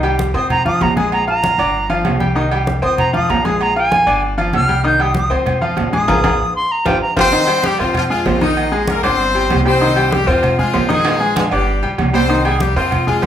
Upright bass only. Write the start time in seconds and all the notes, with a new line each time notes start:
Already playing: C2
0.34 F2
0.81 A#1
1.58 G1
2.05 C2
2.82 F2
3.29 A#1
4.07 G1
4.53 C2
5.31 F2
5.77 A#1
6.08 A#1
6.24 A#1
6.85 G1
7.17 G1
7.80 F2
8.26 A#1
9.04 G1
9.50 C2
10.28 F2
10.74 A#1
11.52 G1
11.83 A#1
11.98 C2
12.76 F2
13.23 A#1